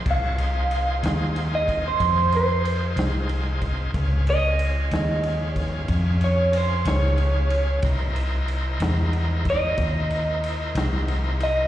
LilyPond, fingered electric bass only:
\new Staff \with { instrumentName = "Fingered electric bass" } { \clef bass \time 12/8 \key f \minor \tempo 4. = 62 c,4. ees,4. f,4. c,4. | des,4. ees,4. f,4. des,4. | c,4. e,4. dis,4. c,4. | }